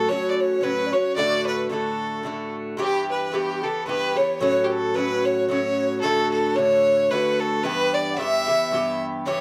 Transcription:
0.00 0.12 F#4 medium
0.00 0.12 A4 medium
0.08 0.60 A2 medium
0.08 0.62 F#3 medium
0.08 0.62 C#4 medium
0.08 0.64 F#4 medium
0.08 0.30 C#5 loud
0.08 0.38 C#5 loud
0.31 0.42 D5 medium
0.39 0.64 C#5 medium
0.39 0.65 C#5 medium
0.61 0.92 A2 medium
0.61 0.93 F#3 medium
0.61 0.93 C#4 medium
0.61 0.91 F#4 medium
0.61 0.88 B4 medium
0.61 0.95 B4 loud
0.86 0.93 D5 medium
0.91 1.17 F#3 soft
0.91 1.17 C#4 soft
0.91 1.16 F#4 soft
0.91 1.16 C#5 medium
1.16 1.68 A2 medium
1.16 1.69 D3 medium
1.16 1.71 A3 medium
1.16 1.72 F#4 medium
1.16 1.44 D5 loud
1.16 1.50 D5 medium
1.46 1.69 B4 medium
1.46 1.70 B4 medium
1.70 2.22 A2 medium
1.70 2.23 D3 medium
1.70 2.24 A3 medium
1.70 2.25 F#4 medium
1.70 2.51 A4 medium
2.23 2.77 A2 medium
2.23 2.78 D3 medium
2.23 2.78 A3 medium
2.23 2.79 F#4 medium
2.77 3.30 G2 medium
2.77 3.32 E3 medium
2.77 3.32 B3 medium
2.77 2.84 G4 medium
2.77 3.33 G4 medium
2.82 3.08 G4 loud
3.10 3.36 B4 medium
3.32 3.62 G2 medium
3.32 3.63 E3 medium
3.32 3.63 B3 medium
3.32 3.40 G4 medium
3.32 3.65 G4 medium
3.32 3.61 G4 medium
3.41 3.47 G4 medium
3.48 3.64 G4 medium
3.62 3.86 E3 soft
3.62 3.87 B3 soft
3.62 3.86 G4 soft
3.62 3.84 A4 medium
3.62 3.86 A4 medium
3.85 4.16 G2 medium
3.85 4.17 E3 medium
3.85 4.16 B3 medium
3.85 4.13 B4 medium
3.85 4.18 B4 loud
3.89 4.14 G4 medium
4.16 4.41 E3 soft
4.16 4.41 B3 soft
4.16 4.40 G4 soft
4.16 4.38 C#5 medium
4.16 4.40 C#5 medium
4.39 4.93 A2 medium
4.39 4.96 F#3 medium
4.39 4.95 C#4 medium
4.39 4.98 F#4 medium
4.39 4.71 C#5 medium
4.39 4.65 C#5 loud
4.64 4.73 G4 medium
4.70 4.96 A4 medium
4.70 4.97 A4 medium
4.94 5.47 A2 medium
4.94 5.49 F#3 medium
4.94 5.50 C#4 medium
4.94 5.27 B4 medium
4.94 5.26 B4 loud
4.98 5.51 F#4 medium
5.25 5.49 C#5 medium
5.25 5.48 C#5 medium
5.48 6.02 A2 medium
5.48 6.03 F#3 medium
5.48 6.04 C#4 medium
5.48 6.04 F#4 medium
5.48 5.98 C#5 medium
5.48 5.99 C#5 loud
6.01 6.55 A2 medium
6.01 6.56 D3 medium
6.01 6.57 A3 medium
6.01 6.30 A4 loud
6.01 6.31 A4 medium
6.05 6.58 F#4 medium
6.32 6.57 A4 loud
6.32 6.57 A4 medium
6.55 7.09 A2 medium
6.55 7.11 D3 soft
6.55 7.11 A3 medium
6.55 7.12 F#4 medium
6.55 7.12 C#5 loud
7.10 7.63 A2 medium
7.10 7.64 D3 medium
7.10 7.65 A3 medium
7.10 7.65 F#4 medium
7.10 7.41 B4 medium
7.10 7.41 B4 loud
7.40 7.65 A4 loud
7.40 7.63 A4 medium
7.63 8.16 G2 medium
7.63 8.18 E3 medium
7.63 8.20 B3 medium
7.63 8.20 G4 medium
7.63 7.96 B4 loud
7.63 7.95 B4 medium
7.93 8.12 D5 medium
7.93 8.18 D5 loud
8.12 8.21 F#5 medium
8.17 8.48 G2 medium
8.17 8.49 E3 soft
8.17 8.48 B3 medium
8.17 8.46 G4 medium
8.17 9.02 E5 loud
8.17 9.03 E5 medium
8.47 8.72 E3 soft
8.47 8.73 B3 soft
8.47 8.72 G4 soft
8.71 9.25 G2 medium
8.71 9.26 E3 medium
8.71 9.27 B3 medium
8.71 9.27 G4 medium
9.25 9.41 G2 medium
9.25 9.41 E3 medium
9.25 9.41 B3 medium
9.25 9.41 G4 medium
9.25 9.41 C#5 loud
9.25 9.41 C#5 medium

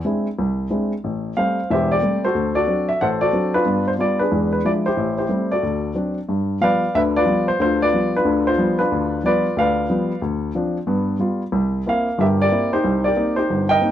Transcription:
0.05 0.26 G#3 soft
0.05 0.27 C4 soft
0.05 0.27 D4 soft
0.05 0.27 E4 medium
0.39 0.66 C2 medium
0.70 0.92 G#3 soft
0.70 0.92 C4 soft
0.70 0.92 D4 soft
0.70 0.92 E4 medium
1.04 1.32 A1 medium
1.37 1.58 G3 soft
1.37 1.59 A3 soft
1.37 1.59 C4 medium
1.37 1.71 C5 medium
1.37 1.70 F5 medium
1.70 1.98 E1 medium
1.70 1.98 E2 medium
1.70 1.91 G4 medium
1.70 2.23 C5 medium
1.70 1.91 E5 medium
1.92 2.33 G4 medium
1.92 2.21 D5 medium
2.02 2.24 G3 soft
2.02 2.24 A3 soft
2.02 2.24 C4 medium
2.25 2.55 F#4 medium
2.25 2.55 A4 medium
2.25 2.54 C5 medium
2.35 2.63 D2 medium
2.55 3.18 F#4 medium
2.55 3.01 A4 medium
2.55 2.89 D5 medium
2.67 2.89 F#3 soft
2.67 2.89 C4 soft
2.67 2.89 D4 medium
2.89 3.01 E5 medium
3.01 3.29 A1 medium
3.01 3.21 A4 medium
3.01 3.63 C5 medium
3.01 3.06 F#5 medium
3.21 3.64 F#4 medium
3.21 3.64 A4 medium
3.21 3.55 D5 medium
3.33 3.55 F#3 medium
3.33 3.55 C4 soft
3.33 3.54 D4 medium
3.54 4.16 D4 medium
3.54 3.98 F4 medium
3.54 3.85 B4 medium
3.65 3.94 G2 medium
3.65 3.94 B3 medium
3.88 3.93 C5 medium
3.99 4.21 G3 soft
3.99 4.21 B3 soft
3.99 4.21 F4 medium
3.99 4.19 D5 medium
4.19 4.64 D4 medium
4.19 4.82 G#4 medium
4.19 4.51 B4 medium
4.31 4.60 E2 medium
4.31 4.60 G#3 medium
4.53 4.66 B4 medium
4.65 4.86 F3 medium
4.65 4.87 G#3 soft
4.65 4.87 D4 soft
4.65 4.85 E4 medium
4.65 4.71 D5 medium
4.86 5.18 E4 medium
4.86 5.19 G4 medium
4.86 5.17 C5 medium
4.97 5.25 A1 medium
5.18 5.61 E4 medium
5.18 5.61 G4 medium
5.18 5.52 C5 medium
5.29 5.51 G3 soft
5.29 5.52 A3 soft
5.29 5.52 C4 soft
5.51 6.14 F#4 soft
5.51 6.14 A4 soft
5.51 5.94 D5 medium
5.63 5.91 D2 medium
5.95 6.17 F#3 soft
5.95 6.17 C4 soft
5.95 6.17 D4 medium
6.29 6.57 G2 medium
6.61 6.83 F3 soft
6.61 6.83 G3 soft
6.61 6.84 B3 medium
6.61 6.96 B4 medium
6.61 7.15 D5 medium
6.61 6.96 F5 medium
6.95 7.23 D2 medium
6.95 7.23 D3 medium
6.95 7.16 B4 medium
6.95 7.00 E5 loud
7.16 7.61 F4 medium
7.16 7.78 B4 medium
7.16 7.46 D5 medium
7.26 7.48 F3 medium
7.26 7.49 G3 soft
7.26 7.49 B3 medium
7.48 7.60 C5 medium
7.60 7.88 D2 medium
7.60 7.88 D3 medium
7.60 7.83 F4 medium
7.60 7.80 C5 medium
7.82 8.16 F4 medium
7.82 8.15 B4 medium
7.82 8.12 D5 loud
7.93 8.14 F3 soft
7.93 8.15 G3 soft
7.93 8.15 B3 medium
8.16 8.77 D4 medium
8.16 8.47 F4 medium
8.16 8.49 B4 medium
8.25 8.53 D2 medium
8.25 8.53 D3 medium
8.47 8.78 F4 medium
8.47 8.80 C5 medium
8.58 8.80 F3 medium
8.58 8.80 G3 soft
8.58 8.80 B3 medium
8.79 9.41 D4 medium
8.79 9.26 F4 medium
8.79 9.21 B4 medium
8.92 9.20 D2 medium
9.24 9.45 F3 medium
9.24 9.46 G3 soft
9.24 9.46 B3 medium
9.24 9.87 F4 medium
9.24 9.58 B4 medium
9.24 9.59 D5 medium
9.57 9.85 D2 medium
9.57 10.20 B4 medium
9.57 10.20 D5 medium
9.57 10.19 F5 medium
9.89 10.11 F3 medium
9.89 10.11 G3 soft
9.89 10.11 B3 medium
10.22 10.50 D2 medium
10.55 10.76 F3 medium
10.55 10.77 C4 soft
10.55 10.77 D4 medium
10.87 11.15 G2 medium
10.87 11.16 B3 medium
11.19 11.41 G3 medium
11.19 11.42 B3 soft
11.19 11.42 F4 medium
11.52 11.81 C2 medium
11.86 12.08 A#3 medium
11.86 12.08 C4 soft
11.86 12.08 E4 medium
11.86 12.19 A#4 medium
11.86 12.21 F5 medium
12.18 12.46 G1 medium
12.18 12.47 G2 medium
12.18 12.40 G4 medium
12.18 12.40 A#4 medium
12.18 12.26 E5 medium
12.41 12.72 G4 medium
12.41 12.83 A#4 medium
12.41 12.71 D5 loud
12.51 12.73 A#3 medium
12.51 12.73 C4 soft
12.51 12.73 E4 medium
12.73 13.15 D#4 medium
12.73 13.04 G4 medium
12.73 13.06 C5 medium
12.84 13.12 C2 medium
13.04 13.36 G4 medium
13.04 13.66 A#4 medium
13.04 13.38 D5 medium
13.16 13.38 A#3 medium
13.16 13.38 C4 soft
13.16 13.36 D#4 medium
13.36 13.80 D#4 medium
13.36 13.91 G4 medium
13.36 13.67 C5 medium
13.50 13.78 G1 medium
13.69 13.91 A#4 medium
13.69 13.91 D#5 medium
13.69 13.91 G5 loud
13.81 13.91 A#3 medium
13.81 13.91 C4 soft
13.81 13.91 D#4 medium

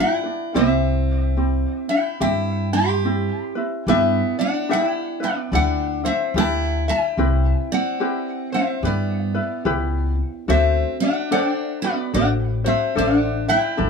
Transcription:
0.00 0.24 D4 medium
0.00 0.53 E4 medium
0.00 0.24 F4 medium
0.00 0.23 G4 medium
0.00 0.22 B4 medium
0.00 0.52 E5 medium
0.00 0.57 G5 medium
0.23 0.55 D4 soft
0.23 0.54 B4 soft
0.54 1.63 C2 medium
0.54 1.36 C4 medium
0.54 1.86 C4 medium
0.54 1.37 E4 medium
0.54 1.36 G4 medium
0.54 1.86 C5 medium
0.54 1.90 E5 loud
1.37 2.20 C4 soft
1.37 2.22 E4 medium
1.37 2.20 G4 soft
1.89 2.19 E4 medium
1.89 2.20 E5 medium
1.89 2.20 G5 medium
2.20 3.28 G2 medium
2.20 3.04 C4 medium
2.20 2.69 E4 medium
2.20 3.05 E4 medium
2.20 3.04 G4 medium
2.20 2.69 E5 medium
2.20 2.74 G5 medium
2.73 3.51 G4 medium
2.73 3.52 A5 medium
2.73 3.51 C6 medium
3.04 3.55 C4 medium
3.04 3.56 E4 medium
3.04 3.55 G4 medium
3.55 3.88 C4 soft
3.55 3.88 E4 soft
3.55 3.87 B4 soft
3.87 4.20 G2 medium
3.87 4.35 B3 medium
3.87 4.68 D4 medium
3.87 4.69 E4 medium
3.87 4.69 G4 medium
3.87 4.70 B4 medium
3.87 4.35 B4 medium
3.87 4.39 E5 loud
4.39 4.69 D4 medium
4.39 4.68 D5 medium
4.39 4.68 F#5 medium
4.69 5.21 D4 medium
4.69 5.20 E4 medium
4.69 5.20 G4 medium
4.69 5.19 B4 medium
4.69 5.18 E5 medium
4.69 4.85 F#5 medium
4.73 4.85 D#4 medium
4.85 5.19 E4 medium
4.85 5.23 G5 medium
5.20 5.52 B3 medium
5.20 5.52 D4 soft
5.20 5.52 E4 soft
5.20 5.52 B4 medium
5.20 5.51 B4 medium
5.25 5.52 D5 medium
5.52 6.06 D2 loud
5.52 6.04 D4 soft
5.52 6.01 D4 medium
5.52 6.02 E4 medium
5.52 6.03 G4 medium
5.52 6.04 B4 medium
5.52 6.00 D5 medium
5.52 6.06 F#5 medium
6.04 6.34 C4 medium
6.04 6.36 D4 soft
6.04 6.35 E4 soft
6.04 6.34 C5 medium
6.04 6.35 E5 medium
6.34 6.88 D2 loud
6.34 7.18 D4 medium
6.34 7.18 E4 medium
6.34 6.84 E4 medium
6.34 7.18 G4 medium
6.34 7.19 B4 medium
6.34 6.84 E5 medium
6.40 6.90 A5 medium
6.88 7.66 E4 medium
6.88 7.66 E5 medium
6.88 7.73 G5 loud
7.17 7.51 C2 medium
7.17 8.00 C4 medium
7.17 8.00 E4 medium
7.17 7.99 G4 medium
7.17 8.00 B4 medium
7.72 8.49 C4 medium
7.72 8.49 D5 medium
7.72 8.57 F#5 loud
8.00 8.52 C4 medium
8.00 8.52 E4 medium
8.00 8.51 G4 medium
8.00 8.52 B4 medium
8.52 8.82 C4 medium
8.52 8.85 C4 soft
8.52 8.83 E4 soft
8.52 8.81 C5 medium
8.52 8.86 E5 medium
8.83 9.37 G2 loud
8.83 10.14 B3 medium
8.83 9.34 E4 medium
8.83 9.34 G4 medium
8.83 9.33 B4 medium
8.83 10.14 B4 medium
8.87 10.15 D5 medium
9.35 9.65 E4 soft
9.35 9.65 B4 medium
9.65 10.19 C#2 loud
9.65 10.49 E4 medium
9.65 10.48 G4 medium
9.65 10.49 B4 medium
10.48 10.82 D2 medium
10.48 10.97 C4 medium
10.48 11.31 D4 medium
10.48 11.31 F#4 medium
10.48 11.31 A4 medium
10.48 11.31 C5 medium
10.48 10.97 C5 medium
10.48 11.02 E5 loud
11.00 11.29 D4 medium
11.00 11.31 D5 medium
11.00 11.32 F#5 medium
11.31 11.44 C#4 medium
11.31 11.82 D4 medium
11.31 11.82 A4 medium
11.31 11.83 C5 medium
11.31 11.80 D5 medium
11.31 11.45 F#5 medium
11.44 11.79 D4 medium
11.44 11.84 G5 medium
11.82 12.12 B3 medium
11.82 12.13 D4 soft
11.82 12.14 F#4 soft
11.82 12.13 B4 medium
11.82 12.14 D5 medium
12.13 12.67 A1 loud
12.13 12.64 D4 medium
12.13 12.28 D4 medium
12.13 12.64 F#4 medium
12.13 12.65 A4 medium
12.13 12.63 C5 medium
12.13 12.29 D5 medium
12.13 12.29 F#5 loud
12.64 12.95 C4 medium
12.64 12.95 D4 soft
12.64 12.95 F#4 medium
12.64 12.96 C5 medium
12.64 12.98 E5 medium
12.95 13.50 A1 medium
12.95 13.15 C#4 medium
12.95 13.77 D4 medium
12.95 13.77 A4 medium
12.95 13.77 C5 medium
12.95 13.17 F5 medium
12.99 13.45 D5 medium
13.15 13.45 D4 medium
13.15 13.49 F#5 medium
13.48 13.90 E4 medium
13.48 13.90 E5 medium
13.48 13.90 G5 loud
13.77 13.90 G1 loud
13.77 13.90 D4 medium
13.77 13.90 E4 medium
13.77 13.90 A4 medium
13.77 13.90 B4 medium

